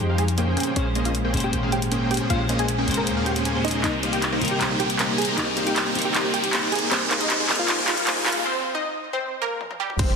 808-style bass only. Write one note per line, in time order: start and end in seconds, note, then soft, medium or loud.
0.00 0.56 F2 medium
0.76 1.33 A#1 loud
1.34 1.52 F1 loud
1.53 2.20 G#1 medium
2.30 2.87 A#1 loud
2.88 3.08 F1 loud
3.07 3.83 D#2 medium
3.84 4.40 C2 loud
4.41 4.59 G1 loud
4.61 5.27 A#1 medium
5.37 5.94 C2 loud
5.95 6.13 G1 loud
6.14 6.71 G1 medium
6.91 7.48 C2 loud
7.49 7.67 G1 loud
7.68 8.35 A#1 medium
9.99 10.16 F1 loud